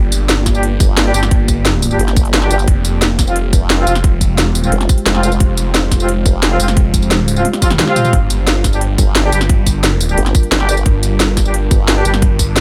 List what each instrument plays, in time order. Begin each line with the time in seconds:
Already playing: detuned saw bass G1, ambient pad A#3 F4 G4 D5
0.12 closed hi-hat, tambourine
0.29 snare, closed hi-hat
0.46 kick, snare, closed hi-hat, tambourine
0.55 brass ensemble G3 D4 G4, tambourine
0.63 closed hi-hat
0.80 wobble bass G1, kick, closed hi-hat, tambourine
0.97 snare, closed hi-hat
1.06 brass ensemble G3 D4 G4
1.14 detuned saw bass G1, brass ensemble G3 D4 G4, closed hi-hat, tambourine
1.23 snare, closed hi-hat, tambourine
1.31 kick, closed hi-hat
1.48 kick, closed hi-hat, tambourine
1.65 snare, closed hi-hat
1.82 open hi-hat, tambourine
1.91 brass ensemble G3 D4 G4, tambourine
1.99 wobble bass G1, closed hi-hat
2.08 snare, closed hi-hat
2.16 kick, closed hi-hat, tambourine
2.25 closed hi-hat
2.34 snare, closed hi-hat
2.42 brass ensemble G3 D4 G4, snare
2.51 wobble bass G1, brass ensemble G3 D4 G4, closed hi-hat, tambourine
2.59 closed hi-hat, tambourine
2.68 detuned saw bass F1, ambient pad G#3 F4 C5, kick, closed hi-hat
2.85 closed hi-hat, tambourine
3.02 snare, closed hi-hat
3.19 kick, snare, closed hi-hat, tambourine
3.27 brass ensemble F3 C4 F4, tambourine
3.36 closed hi-hat
3.53 wobble bass F1, kick, closed hi-hat, tambourine
3.70 snare, closed hi-hat
3.78 brass ensemble F3 C4 F4
3.87 detuned saw bass F1, brass ensemble F3 C4 F4, closed hi-hat, tambourine
3.95 snare, closed hi-hat, tambourine
4.04 kick, closed hi-hat
4.21 kick, closed hi-hat, tambourine
4.38 snare, closed hi-hat
4.46 detuned saw bass E1
4.55 open hi-hat, tambourine
4.64 brass ensemble F3 C4 F4, tambourine
4.72 wobble bass F1, closed hi-hat
4.81 snare, closed hi-hat
4.89 kick, closed hi-hat, tambourine
4.98 closed hi-hat
5.06 wobble bass F1, snare, closed hi-hat
5.15 brass ensemble F3 C4 F4, snare
5.23 brass ensemble F3 C4 F4, closed hi-hat, tambourine
5.32 closed hi-hat, tambourine
5.40 detuned saw bass F1, kick, closed hi-hat
5.57 closed hi-hat, tambourine
5.74 snare, closed hi-hat
5.92 kick, snare, closed hi-hat, tambourine
6.00 brass ensemble F3 C4 F4, tambourine
6.09 closed hi-hat
6.26 wobble bass F1, kick, closed hi-hat, tambourine
6.43 snare, closed hi-hat
6.51 brass ensemble F3 C4 F4
6.60 detuned saw bass F1, brass ensemble F3 C4 F4, closed hi-hat, tambourine
6.68 snare, closed hi-hat, tambourine
6.77 kick, closed hi-hat
6.94 kick, closed hi-hat, tambourine
7.02 tambourine
7.11 snare, closed hi-hat
7.28 open hi-hat, tambourine
7.36 brass ensemble F3 C4 F4, tambourine
7.45 closed hi-hat, high tom, swell
7.53 snare, closed hi-hat, high tom
7.62 detuned saw bass F1, brass ensemble F3 C4 F4, kick, closed hi-hat, tambourine
7.70 snare, closed hi-hat, mid tom
7.79 snare, closed hi-hat, mid tom
7.87 brass ensemble F3 C4 F4, snare
7.96 closed hi-hat, mid tom, tambourine
8.05 closed hi-hat, mid tom, tambourine
8.13 detuned saw bass G1, ambient pad G3 D4 A#4, kick, closed hi-hat
8.30 closed hi-hat, tambourine
8.47 snare, closed hi-hat
8.64 kick, snare, closed hi-hat, tambourine
8.73 brass ensemble G3 D4 G4, tambourine
8.81 closed hi-hat
8.98 wobble bass G1, kick, closed hi-hat, tambourine
9.15 snare, closed hi-hat
9.24 brass ensemble G3 D4 G4
9.32 detuned saw bass G1, brass ensemble G3 D4 G4, closed hi-hat, tambourine
9.41 snare, closed hi-hat, tambourine
9.49 kick, closed hi-hat
9.66 kick, closed hi-hat, tambourine
9.84 snare, closed hi-hat
10.01 open hi-hat, tambourine
10.09 brass ensemble G3 D4 G4, tambourine
10.18 wobble bass G1, closed hi-hat
10.26 snare, closed hi-hat
10.35 kick, closed hi-hat, tambourine
10.43 closed hi-hat
10.52 wobble bass G1, snare, closed hi-hat
10.60 brass ensemble G3 D4 G4, snare
10.69 brass ensemble G3 D4 G4, closed hi-hat, tambourine
10.77 closed hi-hat, tambourine
10.86 detuned saw bass G1, kick, closed hi-hat
11.03 closed hi-hat, tambourine
11.20 snare, closed hi-hat
11.37 kick, snare, closed hi-hat, tambourine
11.45 brass ensemble G3 D4 G4, tambourine
11.54 closed hi-hat
11.71 wobble bass G1, kick, closed hi-hat, tambourine
11.88 snare, closed hi-hat
11.97 brass ensemble G3 D4 G4
12.05 detuned saw bass G1, brass ensemble G3 D4 G4, closed hi-hat, tambourine
12.14 snare, closed hi-hat, tambourine
12.22 kick, closed hi-hat
12.39 kick, closed hi-hat, tambourine
12.56 snare, closed hi-hat